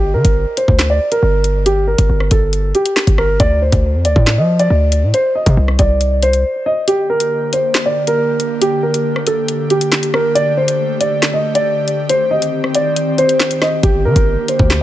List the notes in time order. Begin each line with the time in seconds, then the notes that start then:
Already playing: G1 G4
0.14 D3 A#4
0.25 G1, kick, closed hi-hat
0.57 C5, closed hi-hat
0.68 D2, kick
0.79 snare, clap, closed hi-hat
0.90 D5
1.12 A#4, closed hi-hat
1.23 G1
1.44 closed hi-hat
1.66 G4, closed hi-hat
1.87 A#4
1.98 G1, kick, closed hi-hat
2.09 G1
2.20 cross-stick
2.31 G1 A4, kick, closed hi-hat
2.53 closed hi-hat
2.75 G4, closed hi-hat
2.86 closed hi-hat
2.96 snare, clap
3.07 G1, kick, closed hi-hat
3.18 A#4, cross-stick
3.40 D2 D5, kick, closed hi-hat
3.62 C5
3.72 D2, kick, closed hi-hat
3.94 F2
4.05 D2 D5, closed hi-hat
4.16 A2, kick
4.27 snare, clap, closed hi-hat
4.38 F3 D#5
4.59 D5, closed hi-hat
4.70 D2
4.92 closed hi-hat
5.03 A2
5.14 C5, closed hi-hat
5.35 D#5
5.46 C3, kick, closed hi-hat
5.57 C2
5.68 cross-stick
5.79 C2 D5, kick, closed hi-hat
6.01 closed hi-hat
6.23 C5, closed hi-hat
6.33 closed hi-hat
6.66 D#5
6.88 D3 A#3 G4, closed hi-hat
7.10 A#4
7.20 closed hi-hat
7.53 C5, closed hi-hat
7.75 snare, clap, closed hi-hat
7.86 D5
8.07 A#4, closed hi-hat
8.40 closed hi-hat
8.62 G4, closed hi-hat
8.83 A#4
8.94 closed hi-hat
9.16 cross-stick
9.27 A4, closed hi-hat
9.48 closed hi-hat
9.70 G4, closed hi-hat
9.81 closed hi-hat
9.92 snare, clap
10.03 closed hi-hat
10.14 A#4, cross-stick
10.35 A3 D5, closed hi-hat
10.57 C5
10.68 closed hi-hat
11.00 D5, closed hi-hat
11.22 snare, clap, closed hi-hat
11.33 D#5
11.55 D5, closed hi-hat
11.88 closed hi-hat
12.09 D#3 C4 C5, closed hi-hat
12.31 D#5
12.42 closed hi-hat
12.64 cross-stick
12.75 D5, closed hi-hat
12.96 closed hi-hat
13.18 C5, closed hi-hat
13.29 closed hi-hat
13.40 snare, clap
13.51 closed hi-hat
13.62 D#5, cross-stick, snare
13.83 G1 D3 A#3 G4, kick, closed hi-hat
14.05 D3 A#4
14.16 G1, kick, closed hi-hat
14.48 C5, closed hi-hat
14.59 D2, kick
14.70 snare, clap, closed hi-hat